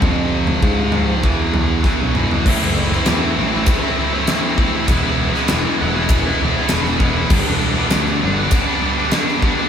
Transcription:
<<
  \new Staff \with { instrumentName = "Distorted electric guitar" } { \time 4/4 \key e \phrygian \tempo 4 = 99 <f, c f>4 <f, c f>8 <f, c f>8 <e, b, e>4 <e, b, e>8 <e, b, e>8 | \key a \minor <a, e a c' e'>16 <a c' e'>8 <a c' e'>16 <a, e a c' e'>8 <e a c' e'>16 <a c' e'>8 <a c' e'>16 <e a c' e'>16 <a c' e'>16 <a, e a c' e'>8 <e a c' e'>16 <a c' e'>16 | <e gis b e'>16 <gis b e'>8 <gis b e'>16 <e gis b e'>8 <e gis b e'>16 <gis b e'>8 <gis b e'>16 <e gis b e'>16 <gis b e'>16 <e gis b e'>8 <e gis b e'>16 <gis b e'>16 | <g, d g b d'>16 <g b d'>8 <g b d'>16 <g, d g b d'>8 <d g b d'>16 <g b d'>8 <g b d'>16 <d g b d'>16 <g b d'>16 <g, d g b d'>8 <d g b d'>16 <g b d'>16 | }
  \new Staff \with { instrumentName = "Picked electric bass" } { \clef bass \time 4/4 \key e \phrygian f,4 aes,4 e,4~ e,16 b,,8 r16 | \key a \minor a,,16 fis,,8. e,8 a,,8 r2 | e,,16 e,,8 r16 e,,16 r16 e,,4 e,,16 r16 e,,8 e,,8 | g,,16 e,,8. d,8 g,,8 r2 | }
  \new DrumStaff \with { instrumentName = "Drums" } \drummode { \time 4/4 <bd tomfh>8. tomfh16 bd8 tomfh8 bd8 tomfh8 <bd sn>8 toml16 tomfh16 | <cymc bd>8. sn16 <rb sn>4 <bd rb>4 <rb sn>8 bd8 | <bd rb>8. sn16 <rb sn>4 <bd rb>4 <rb sn>16 sn16 bd8 | <cymc bd>4 <rb sn>16 sn8. <bd rb>4 <rb sn>16 sn16 bd8 | }
>>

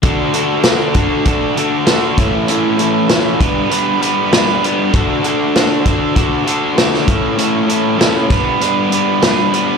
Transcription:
<<
  \new Staff \with { instrumentName = "Overdriven electric guitar" } { \time 4/4 \key d \major \tempo 4 = 98 <d d' fis' a'>8 <d d' fis' a'>8 <d d' fis' a'>8 <d d' fis' a'>8 <d d' fis' a'>8 <d d' fis' a'>8 <d d' fis' a'>8 <a, a cis' e' a'>8 | <a, a cis' e' a'>8 <a, a cis' e' a'>8 <a, a cis' e' a'>8 <g b d' b'>8 <g b d' b'>8 <g b d' b'>8 <g b d' b'>8 <g b d' b'>8 | <d d' fis' a'>8 <d d' fis' a'>8 <d d' fis' a'>8 <d d' fis' a'>8 <d d' fis' a'>8 <d d' fis' a'>8 <d d' fis' a'>8 <a, a cis' e' a'>8 | <a, a cis' e' a'>8 <a, a cis' e' a'>8 <a, a cis' e' a'>8 <g b d' b'>8 <g b d' b'>8 <g b d' b'>8 <g b d' b'>8 <g b d' b'>8 | }
  \new Staff \with { instrumentName = "Overdriven electric guitar" } { \time 4/4 \key d \major <d d' fis' a'>8 <d d' fis' a'>8 <d d' fis' a'>8 <d d' fis' a'>8 <d d' fis' a'>8 <d d' fis' a'>8 <d d' fis' a'>8 <a, e a cis' e' a'>8 | <a, e a cis' e' a'>8 <a, e a cis' e' a'>8 <a, e a cis' e' a'>8 <g b d' b'>8 <g b d' b'>8 <g b d' b'>8 <g b d' b'>8 <g b d' b'>8 | <d d' fis' a'>8 <d d' fis' a'>8 <d d' fis' a'>8 <d d' fis' a'>8 <d d' fis' a'>8 <d d' fis' a'>8 <d d' fis' a'>8 <a, a cis' e' a'>8 | <a, a cis' e' a'>8 <a, a cis' e' a'>8 <a, a cis' e' a'>8 <g b d' b'>8 <g b d' b'>8 <g b d' b'>8 <g b d' b'>8 <g b d' b'>8 | }
  \new DrumStaff \with { instrumentName = "Drums" } \drummode { \time 4/4 <hh bd>8 hh8 <hh sn>8 <hh bd>8 <hh bd>8 hh8 <hh sn>8 <hh bd>8 | hh8 hh8 <hh sn>8 <hh bd>8 hh8 hh8 <hh sn>8 hh8 | <hh bd>8 hh8 <hh sn>8 <hh bd>8 <hh bd>8 hh8 <hh sn>16 sn16 <hh bd>8 | hh8 hh8 <hh sn>8 <hh bd sn>8 hh8 hh8 <hh sn>8 hh8 | }
>>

